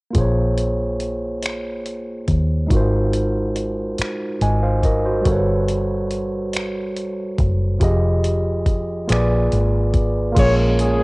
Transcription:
0.11 A#3 F4
0.15 A#1 G#4 C5, kick, closed hi-hat
0.21 C#5
0.58 closed hi-hat
1.00 closed hi-hat
1.43 finger snap, closed hi-hat
1.86 closed hi-hat
2.28 D#2, kick, closed hi-hat
2.67 G#3 D#4, kick
2.71 G#1 F4 F#4 A#4, closed hi-hat
2.76 C5
3.13 closed hi-hat
3.56 closed hi-hat
3.98 finger snap, muted fingered electric bass stroke, closed hi-hat
4.41 G#1 D#5 G#5, closed hi-hat
4.63 C5 F5
4.83 A#4 D#5, kick, closed hi-hat
5.05 F#4 C5
5.21 G3 F#4
5.26 G1 A4 A#4, kick, closed hi-hat
5.32 B4 C#5
5.68 closed hi-hat
6.11 closed hi-hat
6.53 finger snap, closed hi-hat
6.96 closed hi-hat
7.38 F#1, kick, closed hi-hat
7.79 F1 F3 F4 G4 G#4, kick, closed hi-hat
7.84 D#5
8.24 closed hi-hat
8.66 kick, closed hi-hat
9.07 A#1 A#3 F4 G#4 B4, closed hi-hat
9.12 D5, finger snap
9.52 G#1, closed hi-hat
9.94 kick, closed hi-hat
10.32 G#3 A#3 C#4 F4
10.36 A#1 G#4 A#4 C#5, kick, closed hi-hat, crash
10.42 C#5
10.79 G#4, closed hi-hat

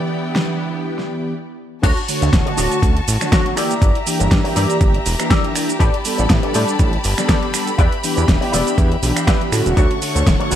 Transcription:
Already playing: E3 B3 D4 E4 G4 D5 G5
0.36 snare
0.99 snare
1.83 D2 D4 F#4 A4 C#5 A5 C#6, kick, closed hi-hat, crash, shaker
1.97 closed hi-hat
2.08 D3 A3 F#4 C#5, muted clean electric guitar stroke, open hi-hat, shaker
2.21 D2, muted clean electric guitar stroke, closed hi-hat, shaker
2.33 D1, muted clean electric guitar stroke, kick, snare, closed hi-hat, shaker
2.46 D3 A3 F#4, muted clean electric guitar stroke, closed hi-hat
2.57 D1 D4 F#4 A4 C#5, open hi-hat, shaker
2.72 closed hi-hat, shaker
2.82 D2 D3 C#4 F#4, kick, closed hi-hat, shaker
2.96 muted clean electric guitar stroke, closed hi-hat
3.08 A1, open hi-hat, shaker
3.20 D3 A3 F#4 C#5, finger snap, muted clean electric guitar stroke, snare, closed hi-hat, shaker
3.31 D4 F#4 A4 C#5, finger snap, kick, snare, closed hi-hat, shaker
3.46 closed hi-hat
3.56 E3 A#3 D4 E4 G4 A#4 D5 E5 A#5, finger snap, open hi-hat, shaker
3.71 closed hi-hat, shaker
3.82 G1, kick, closed hi-hat, shaker
3.95 closed hi-hat
4.06 E3 A#3 D4 G4, muted clean electric guitar stroke, open hi-hat, shaker
4.20 G1, muted clean electric guitar stroke, closed hi-hat, shaker
4.31 G2, muted clean electric guitar stroke, kick, snare, closed hi-hat, shaker
4.44 E3 A#3 D4 G4, muted clean electric guitar stroke, open hi-hat
4.55 G2 E4 G4 A#4 D5, snare, open hi-hat, shaker
4.70 closed hi-hat, shaker
4.80 G1 E3 A#3 D4 G4, kick, closed hi-hat, shaker
4.94 muted clean electric guitar stroke, closed hi-hat
5.06 E1, open hi-hat, shaker
5.19 E3 A#3 D4 G4, finger snap, muted clean electric guitar stroke, closed hi-hat, shaker
5.30 E4 G4 A#4 D5, finger snap, kick, snare, closed hi-hat, shaker
5.44 closed hi-hat
5.54 E3 A#3 D4 G4, finger snap, muted clean electric guitar stroke, open hi-hat, shaker
5.69 closed hi-hat, shaker
5.79 A1 G4 A4 B4 D5 A5 B5, kick, closed hi-hat, shaker
5.94 closed hi-hat
6.04 G3 B3 D4 A4, muted clean electric guitar stroke, open hi-hat, shaker
6.18 A1, muted clean electric guitar stroke, closed hi-hat, shaker
6.29 A2, muted clean electric guitar stroke, kick, snare, closed hi-hat, shaker
6.43 G3 B3 D4 A4, muted clean electric guitar stroke, closed hi-hat
6.54 A2 G4 A4 B4 D5, open hi-hat, shaker
6.68 closed hi-hat, shaker
6.79 A1 G3 B3 D4 A4, kick, closed hi-hat, shaker
6.92 muted clean electric guitar stroke, closed hi-hat
7.04 G1, open hi-hat, shaker
7.17 G3 B3 D4 A4, finger snap, muted clean electric guitar stroke, snare, closed hi-hat, shaker
7.29 G4 A4 B4 D5, finger snap, kick, snare, closed hi-hat, shaker
7.43 closed hi-hat
7.53 G3 B3 D4 A4, finger snap, muted clean electric guitar stroke, open hi-hat, shaker
7.67 closed hi-hat, shaker
7.78 E2 E4 G4 B4 D5 E5, kick, closed hi-hat, shaker
7.92 closed hi-hat
8.03 E3 B3 D4 G4, muted clean electric guitar stroke, open hi-hat, shaker
8.16 E2, muted clean electric guitar stroke, closed hi-hat, shaker
8.28 E1, muted clean electric guitar stroke, kick, snare, closed hi-hat, shaker
8.41 E3 B3 D4 G4, muted clean electric guitar stroke, open hi-hat
8.52 E1 E4 G4 B4 D5, snare, open hi-hat, shaker
8.67 closed hi-hat, shaker
8.78 E2 E3 B3 D4 G4, kick, closed hi-hat, shaker
8.91 muted clean electric guitar stroke, closed hi-hat
9.03 B1 E3 B3 D4 G4, open hi-hat, shaker
9.16 finger snap, muted clean electric guitar stroke, closed hi-hat, shaker
9.27 E4 G4 B4 D5, finger snap, kick, snare, closed hi-hat, shaker
9.41 E3 B3 D4 G4, closed hi-hat
9.52 A2 D3 A3 C#4 F#4, finger snap, muted clean electric guitar stroke, open hi-hat, shaker
9.66 E1, closed hi-hat, shaker
9.76 D2 D4 F#4 A4 C#5 F#5 C#6, kick, closed hi-hat, shaker
9.91 closed hi-hat
10.01 D3 A3 F#4 C#5, muted clean electric guitar stroke, open hi-hat, shaker
10.15 D2, muted clean electric guitar stroke, closed hi-hat, shaker
10.26 D1, muted clean electric guitar stroke, kick, snare, closed hi-hat, shaker
10.39 D3 A3 F#4 C#5, muted clean electric guitar stroke, closed hi-hat
10.51 D1 D4 F#4 A4, open hi-hat, shaker

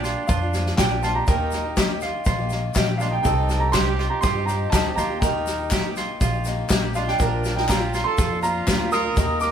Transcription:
Already playing: A#1 A#3 D4 F4 G5
0.04 F4, snare, shaker
0.27 F2 D4 F4 F5, kick, snare, shaker
0.42 A#3 D4 F4
0.54 F3 A#3 D4 F4, snare, shaker
0.66 snare
0.77 A#1 A#2 F3 A#3 D4 F4 G4 G5, kick, snare, clap, shaker
0.89 A#3 D4 F4
1.02 F3 A#3 D4 F4 A5, snare, shaker
1.14 D4 F4 G4 A#5
1.19 A#3
1.27 D#2 D#3 A#3 D#4 G4 A#4 G5, kick, snare, shaker
1.51 D#3 A#3 D#4, snare, shaker
1.56 G4
1.64 A#3 D#4 G4
1.76 D#3 A#3 D#4 G4, kick, snare, clap, shaker
1.89 A#3 D#4 G4
2.01 F4, snare, shaker
2.25 A#1 F4, kick, snare, shaker
2.39 A#3 D#4 G4
2.50 D#3 A#3 D#4 G4, snare, shaker
2.74 A#1 D#3 A#3 D#4 G4, kick, snare, clap, shaker
2.87 A#3 D#4 G4
2.98 D#3 A#3 D4 D#4 F4 F5, snare, shaker
3.02 G4
3.10 D#4 G4 G5
3.14 A#3 D#4
3.21 C2 C3 D#3 D#4 G5, kick, shaker
3.25 C4 D#4 G4 A4, snare
3.48 D#3 C4 D#4 G4, snare, shaker
3.60 D#4 G4 A#5
3.64 C4
3.72 C3 D#3 C4 D#4 G4 C6, kick, snare, clap, shaker
3.77 G4
3.86 C4 D#4 G4
3.99 F4, snare
4.09 G4 A#5
4.21 G2 F4 G4 C6, kick, snare, shaker
4.35 C4 D#4 G4
4.45 D#3 C4 D#4 G4 A#5, snare, shaker
4.50 G4
4.70 D2 C3 D#3 D#4 G4 A5, kick, snare, clap, shaker
4.74 C4 D#4 G4
4.95 D#2 D#3 A#3 D#4 F4 G4 A#5, snare, shaker
5.00 G4
5.10 A#3 D#4 G4
5.20 D#3 A#3 D#4 G4 A#4 G5, kick, snare, shaker
5.47 snare, shaker
5.59 A#3 D#4 G4
5.71 D#3 A#3 D#4 G4, kick, snare, clap, shaker
5.83 A#3 D#4 G4
5.96 F4, snare, shaker
6.21 A#1 F4, kick, snare, shaker
6.33 A#3 D#4 G4
6.44 D#3 A#3 D#4 G4, snare, shaker
6.69 A#1 D#3 A#3 D#4 G4, kick, snare, clap, shaker
6.82 A#3 D#4 G4
6.93 D#3 A#3 D4 D#4 F4 G4 F5, snare, shaker
7.06 A#3 D4 D#4 G4 G5, snare
7.18 A#1 A#2 F3 A#3 D4 F4 A#4, kick, snare, shaker
7.44 snare, shaker
7.54 A#3 D4 D#4 F4 G5, snare
7.68 A#2 F3 A#3 D4 F4 G4 A#5, kick, snare, clap, shaker
7.79 A#3 D4 F4
7.93 F4, snare, shaker
8.04 A4 C6
8.18 F2 F4, kick, snare, shaker
8.29 A#3 D4 F4
8.41 F3 A#3 D4 F4 A#5, snare, shaker
8.67 D2 A#2 F3 A#3 D4 F4 G4, kick, snare, clap, shaker
8.91 F3 A#3 D4 F4 A#4 D#6, snare, shaker
9.03 A#3 D4 F4
9.15 D#2 D#3 A#3 D#4 G4 A#4, kick, snare, shaker
9.40 A#4 D6, snare, shaker

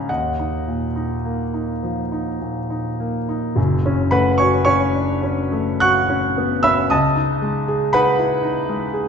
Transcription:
Already playing: G#2 F3 C#4 D#4 F5 F#5 G#5 A#5
0.09 D#2 D#5 F#5
0.39 D#4
0.68 A#2
0.96 D#4
1.25 A#3
1.54 D#4
1.83 F3
2.12 D#4
2.41 A#2
2.70 D#4
3.00 A#3
3.29 D#4
3.56 F#1 F#2
3.86 C#4
4.11 A3 B4 F#5 B5
4.38 F#4 C#5 G#5 C#6
4.65 C#4 C#5 G#5 C#6
4.94 D4
5.23 C#4
5.52 A3
5.80 F#4 F#5 C#6 F#6
6.09 C#4
6.38 B3
6.63 C#4 E5 B5 E6
6.90 C#2 D#5 A5 D#6
7.16 D#4
7.42 G#3
7.68 G#4
7.93 D#4 B4 F#5 B5
8.18 E4
8.43 D#4
8.69 G#3
8.94 G#4

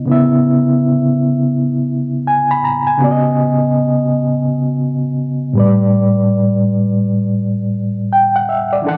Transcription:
0.05 C#3 B3
0.09 E4 E5
2.27 G#5
2.51 B5
2.64 A#5
2.87 G#5
2.98 C#3 B3
3.02 F#4 D5
3.11 D#5
5.53 A2 G3
5.58 B4 D5
8.13 G5
8.36 F#5
8.49 E5
8.73 D5
8.82 E3 D4
8.86 A4 F#5

